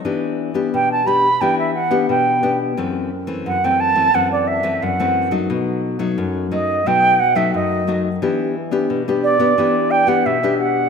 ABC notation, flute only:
X:1
M:4/4
L:1/16
Q:1/4=88
K:Em
V:1 name="Flute"
z4 g a b2 g e f2 g3 z | z4 f g a2 f d e2 f3 z | z6 ^d2 g2 f e d3 z | z6 d4 g f e2 f2 |]